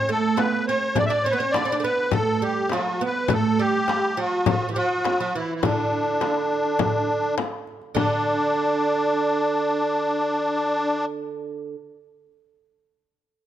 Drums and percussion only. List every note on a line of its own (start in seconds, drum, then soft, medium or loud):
0.38 darbuka tek medium
0.38 frame drum medium
0.82 darbuka ka soft
0.95 darbuka dum medium
0.95 frame drum medium
1.54 darbuka tek medium
1.54 frame drum medium
1.69 darbuka ka soft
1.83 darbuka ka soft
1.98 darbuka ka soft
2.12 frame drum medium
2.12 darbuka dum medium
2.28 darbuka ka soft
2.70 darbuka tek medium
2.70 frame drum medium
3.16 darbuka ka soft
3.28 frame drum medium
3.28 darbuka dum medium
3.88 darbuka tek medium
3.88 frame drum medium
4.04 darbuka ka soft
4.18 darbuka ka soft
4.33 darbuka ka soft
4.46 frame drum medium
4.46 darbuka dum medium
4.61 darbuka ka soft
5.05 darbuka tek medium
5.05 frame drum medium
5.48 darbuka ka soft
5.63 frame drum medium
5.63 darbuka dum medium
5.78 darbuka ka soft
5.93 darbuka ka soft
6.07 darbuka ka soft
6.21 darbuka tek medium
6.21 frame drum medium
6.51 darbuka ka soft
6.65 darbuka ka soft
6.79 frame drum medium
6.79 darbuka dum medium
6.94 darbuka ka soft
7.38 darbuka tek medium
7.38 frame drum medium
7.67 darbuka ka soft
7.82 darbuka ka soft
7.96 darbuka dum medium
7.96 frame drum medium